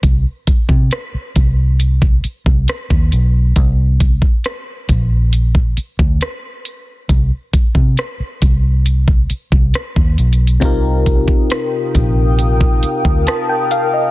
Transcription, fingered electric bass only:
X:1
M:4/4
L:1/16
Q:1/4=68
K:Bbmix
V:1 name="Fingered electric bass" clef=bass
C,, z2 C, z2 C,,4 z C,, z E,, =B,,,2 | C,,3 z3 B,,,4 z D,, z4 | C,, z2 C, z2 C,,4 z C,, z E,, =B,,,2 | C,,3 z3 B,,,4 z D,, z4 |]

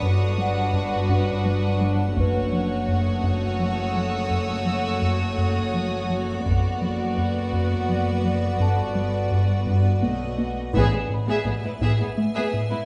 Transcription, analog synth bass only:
X:1
M:3/4
L:1/8
Q:1/4=84
K:F#phr
V:1 name="Analog synth bass" clef=bass
G,, G, G,, G,, G, G, | F,, F, F,, F,, F, F, | F,, F, F,, F,, F, F, | F,, F, F,, F,, F, F, |
G,, G, G,, G,, B, B, | [K:Ephr] A,, A,, A,, A,, A, A,, |]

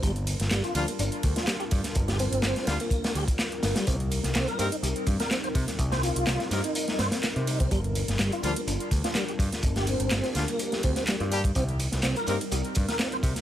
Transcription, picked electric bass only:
X:1
M:4/4
L:1/16
Q:"Swing 16ths" 1/4=125
K:Gm
V:1 name="Picked electric bass" clef=bass
G,,,3 G,,, G,,, z D,, z G,,, z D,, z3 G,, z | G,,,3 G,,, G,,, z D,, z3 D,, z3 G,,, z | C,,3 C,, C,, z G,, z C,, z G,, z3 C, z | C,,3 C,, C,, z G,, z3 G,, z2 C,3 |
G,,,3 G,,, G,,, z D,, z G,,, z D,, z3 G,, z | G,,,3 G,,, G,,, z D,, z3 D,, z2 G,,3 | C,,3 C,, C,, z G,, z C,, z G,, z3 C, z |]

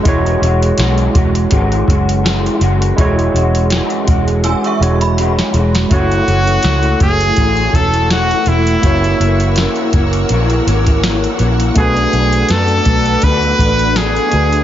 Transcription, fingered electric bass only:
X:1
M:4/4
L:1/16
Q:"Swing 16ths" 1/4=82
K:E
V:1 name="Fingered electric bass" clef=bass
E,,,2 E,,,2 B,,,2 E,,,2 G,,,2 F,,,4 F,,,2 | E,,,2 E,,,3 z E,,,3 z E,,,4 E,,,2 | F,,,2 F,,,2 C,,2 F,,,2 A,,,2 E,,,4 E,,,2 | F,,,2 F,,,3 z F,,,2 ^A,,,2 G,,,4 A,,,2 |
B,,,2 B,,,2 F,,2 B,,,2 =D,,2 A,,,4 D,,2 |]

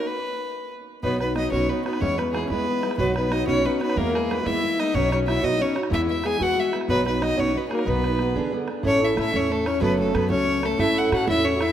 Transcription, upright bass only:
X:1
M:6/8
L:1/8
Q:3/8=123
K:B
V:1 name="Upright bass" clef=bass
z6 | B,,,3 B,,, z2 | E,,3 E,, z2 | B,,,3 B,,, z2 |
E,,3 E,, z2 | B,,,3 B,,, z2 | E,,3 E,, z2 | B,,,3 B,,, z2 |
B,,,3 E,, z2 | [K:A] A,,,2 A,, E,,3 | F,,,2 F,, C,,3 | A,,,2 A,, E,,3 |]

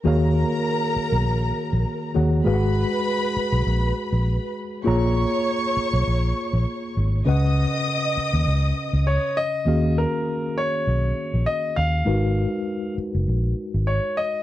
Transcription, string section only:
X:1
M:4/4
L:1/8
Q:"Swing 16ths" 1/4=100
K:Ebm
V:1 name="String section"
[Bb]6- [Bb] z | [cc']6- [cc'] z | [dd']6- [dd'] z | [ee']6- [ee'] z |
z8 | z8 |]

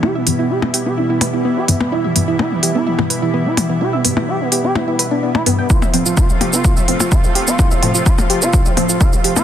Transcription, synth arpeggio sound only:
X:1
M:4/4
L:1/16
Q:1/4=127
K:Ephr
V:1 name="Synth arpeggio sound"
E e z E z2 G B, E E B E B, z2 B, | E e z E z2 G B, E E B E B, z2 B, | E e z E z2 G B, E E B D D z2 g | E e z F z2 G B, E e z F z2 G B, |
E e z F z2 G B, E e z F z2 G B, |]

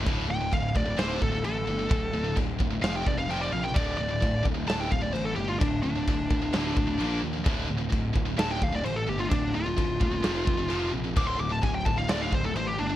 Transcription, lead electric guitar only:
X:1
M:4/4
L:1/16
Q:1/4=130
K:Dm
V:1 name="Lead electric guitar"
z2 g2 f2 d2 c2 A2 A4- | A4 z4 f g d f g d f g | d2 d4 z2 a g f d c A G F | D2 D12 z2 |
z8 a g f d c A G F | D2 F12 z2 | d' c' d' a ^g =g a f d f c A c G D2 |]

